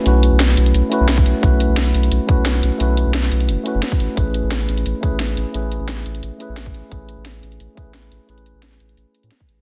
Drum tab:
HH |x-x-x-xxx-x-x-x-|x-x-x-xxx-x-x-x-|x-x-x-xxx-x-x-x-|x-x-x-xxx-x-x-x-|
SD |----oo------o---|----o-------o---|----oo------o---|----o-------o---|
BD |-------------o--|o---------o-----|-------------o--|o---------o-----|

HH |x-x-x-xxx-x-x-x-|x-x-x-xxx-x-x-x-|xxx-x-xxx-xxx-x-|
SD |----oo------o---|----o-------o---|----oo------o---|
BD |-------------o--|o---------o-----|-------------o--|